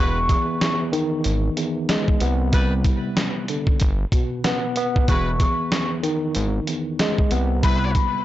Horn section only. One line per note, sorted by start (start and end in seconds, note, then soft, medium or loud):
0.00 0.18 G#3 medium
0.00 0.18 F#4 medium
0.00 0.18 B4 loud
2.53 2.73 G3 loud
2.53 2.73 E4 medium
2.53 2.73 B4 loud
5.08 5.29 G#3 loud
5.08 5.29 F#4 loud
5.08 5.29 B4 loud
7.64 7.91 G3 medium
7.64 7.91 E4 loud
7.64 7.91 B4 loud